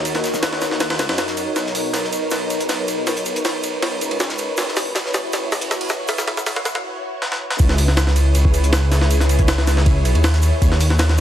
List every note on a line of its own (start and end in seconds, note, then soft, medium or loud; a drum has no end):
0.00 0.98 D#2 medium
0.00 4.54 D#4 medium
0.00 1.53 F#4 medium
0.00 4.54 A#4 medium
0.00 4.54 C#5 medium
0.05 ride medium
0.05 shaker medium
0.15 snare soft
0.15 closed hi-hat soft
0.24 snare loud
0.24 ride medium
0.24 shaker medium
0.34 kick loud
0.34 snare loud
0.34 shaker medium
0.43 snare loud
0.43 ride medium
0.43 shaker medium
0.53 snare medium
0.61 snare medium
0.61 ride medium
0.61 shaker medium
0.71 snare soft
0.80 snare loud
0.80 ride medium
0.80 shaker medium
0.90 snare loud
0.90 ride medium
0.99 1.08 C#2 medium
0.99 snare loud
0.99 ride medium
0.99 shaker medium
1.09 1.45 F#2 medium
1.09 snare loud
1.09 ride medium
1.18 snare loud
1.18 ride medium
1.18 shaker medium
1.28 snare loud
1.28 ride soft
1.37 ride medium
1.37 shaker medium
1.56 2.30 B1 loud
1.56 7.56 B4 medium
1.56 snare soft
1.56 ride medium
1.56 shaker medium
1.66 snare medium
1.75 open hi-hat medium
1.75 shaker medium
1.93 snare loud
1.93 snare soft
1.93 ride medium
1.93 shaker medium
2.04 snare medium
2.13 ride medium
2.13 shaker medium
2.31 2.48 B1 loud
2.31 snare medium
2.31 ride medium
2.31 shaker medium
2.50 4.00 B1 medium
2.50 ride medium
2.50 shaker medium
2.60 closed hi-hat soft
2.69 snare loud
2.69 snare medium
2.69 ride medium
2.69 shaker medium
2.88 ride medium
2.88 shaker medium
3.07 snare medium
3.07 ride medium
3.07 shaker medium
3.17 closed hi-hat soft
3.26 ride medium
3.26 shaker medium
3.36 closed hi-hat soft
3.45 snare loud
3.45 snare medium
3.45 ride medium
3.45 shaker medium
3.63 ride medium
3.63 shaker medium
3.82 snare medium
3.82 ride medium
4.01 4.10 F#1 medium
4.01 ride medium
4.01 shaker medium
4.11 4.47 C#2 medium
4.11 ride soft
4.20 snare medium
4.20 ride medium
4.20 shaker medium
4.30 snare loud
4.30 ride soft
4.38 ride medium
4.38 shaker medium
4.57 5.32 F#1 loud
4.57 7.57 E4 medium
4.57 7.57 F#4 medium
4.57 7.57 C#5 medium
4.57 snare medium
4.57 ride medium
4.57 shaker medium
4.68 snare medium
4.76 snare medium
4.76 open hi-hat medium
4.76 shaker medium
4.95 snare loud
4.95 snare medium
4.95 ride medium
4.95 shaker medium
5.06 snare medium
5.14 snare medium
5.14 ride medium
5.14 shaker medium
5.33 5.50 F#1 loud
5.33 snare medium
5.33 ride medium
5.33 shaker medium
5.52 6.84 F#1 medium
5.52 snare medium
5.52 ride medium
5.52 shaker medium
5.61 closed hi-hat soft
5.61 ride medium
5.71 snare medium
5.71 snare loud
5.71 ride medium
5.71 shaker medium
5.81 ride medium
5.89 snare medium
5.89 snare loud
5.89 ride medium
5.89 shaker medium
6.08 snare medium
6.08 ride medium
6.08 shaker medium
6.18 snare medium
6.18 snare loud
6.18 shaker medium
6.27 snare medium
6.27 ride medium
6.37 snare medium
6.37 shaker medium
6.46 snare loud
6.46 ride medium
6.46 shaker medium
6.56 snare medium
6.65 snare loud
6.65 ride medium
6.65 shaker medium
6.75 snare medium
7.22 snare medium
7.32 snare medium
7.50 snare medium
7.59 8.34 C#2 loud
7.59 10.59 E4 medium
7.59 10.59 G#4 medium
7.59 10.59 B4 medium
7.59 11.20 C#5 medium
7.59 kick loud
7.59 ride medium
7.59 shaker medium
7.69 snare medium
7.69 snare soft
7.78 open hi-hat medium
7.78 shaker medium
7.88 snare soft
7.97 snare loud
7.97 ride medium
7.97 shaker medium
8.07 snare medium
8.16 ride medium
8.16 shaker medium
8.35 8.52 C#2 loud
8.35 ride medium
8.35 shaker medium
8.45 kick loud
8.54 10.04 C#2 medium
8.54 ride medium
8.54 shaker medium
8.64 closed hi-hat soft
8.73 snare loud
8.73 ride medium
8.73 shaker medium
8.92 snare soft
8.92 ride medium
8.92 shaker medium
9.01 snare soft
9.11 ride medium
9.11 shaker medium
9.20 snare soft
9.20 closed hi-hat soft
9.29 ride medium
9.29 shaker medium
9.39 kick loud
9.39 closed hi-hat soft
9.48 snare loud
9.48 ride medium
9.48 shaker medium
9.58 snare medium
9.67 snare medium
9.67 ride medium
9.67 shaker medium
9.77 snare soft
9.86 kick loud
9.86 ride medium
10.05 10.14 B1 medium
10.05 ride medium
10.05 shaker medium
10.15 10.51 D#2 medium
10.15 ride soft
10.24 snare loud
10.24 ride medium
10.24 shaker medium
10.34 snare loud
10.34 ride soft
10.42 ride medium
10.42 shaker medium
10.62 11.20 D#2 loud
10.62 11.20 D#4 medium
10.62 11.20 F#4 medium
10.62 11.20 A#4 medium
10.62 kick loud
10.62 ride medium
10.62 shaker medium
10.72 snare soft
10.80 open hi-hat medium
10.80 shaker medium
10.90 snare soft
10.99 snare loud
10.99 ride medium
10.99 shaker medium
11.09 snare medium